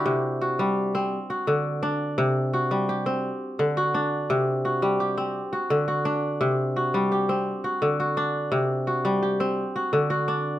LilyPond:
<<
  \new Staff \with { instrumentName = "Kora" } { \time 12/8 \key c \lydian \tempo 4. = 113 g'16 r8. fis'4. r4 fis'4. r4 | r4 fis'4 g'4. r4 fis'4. | r4 fis'4 g'4. fis'4 fis'4. | r4 fis'4 g'4. fis'4 fis'4. |
r4 fis'4 g'4. fis'4 fis'4. | }
  \new Staff \with { instrumentName = "Kora" } { \clef bass \time 12/8 \key c \lydian c4 r8 g4 c'8 r4 d4 d'4 | c4 r8 g4 c'8 r4 d4 d'4 | c4 r8 g4 c'8 r4 d4 d'4 | c4 r8 g4 c'8 r4 d4 d'4 |
c4 r8 g4 c'8 r4 d4 d'4 | }
>>